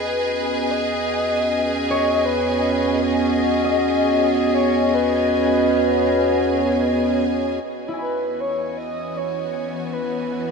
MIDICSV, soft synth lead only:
0, 0, Header, 1, 2, 480
1, 0, Start_track
1, 0, Key_signature, 4, "major"
1, 0, Tempo, 769231
1, 444, Time_signature, 3, 2, 24, 8
1, 6560, End_track
2, 0, Start_track
2, 0, Title_t, "Soft synth lead"
2, 0, Program_c, 0, 80
2, 0, Note_on_c, 0, 71, 90
2, 443, Note_on_c, 0, 75, 104
2, 452, Note_off_c, 0, 71, 0
2, 1404, Note_on_c, 0, 71, 103
2, 1413, Note_off_c, 0, 75, 0
2, 1883, Note_on_c, 0, 75, 91
2, 1892, Note_off_c, 0, 71, 0
2, 2602, Note_off_c, 0, 75, 0
2, 2605, Note_on_c, 0, 75, 93
2, 2828, Note_off_c, 0, 75, 0
2, 2837, Note_on_c, 0, 73, 100
2, 3083, Note_on_c, 0, 71, 89
2, 3092, Note_off_c, 0, 73, 0
2, 4523, Note_off_c, 0, 71, 0
2, 4996, Note_on_c, 0, 71, 84
2, 5242, Note_on_c, 0, 73, 92
2, 5252, Note_off_c, 0, 71, 0
2, 5473, Note_on_c, 0, 75, 94
2, 5482, Note_off_c, 0, 73, 0
2, 5721, Note_on_c, 0, 73, 94
2, 5731, Note_off_c, 0, 75, 0
2, 6197, Note_on_c, 0, 71, 74
2, 6207, Note_off_c, 0, 73, 0
2, 6560, Note_off_c, 0, 71, 0
2, 6560, End_track
0, 0, End_of_file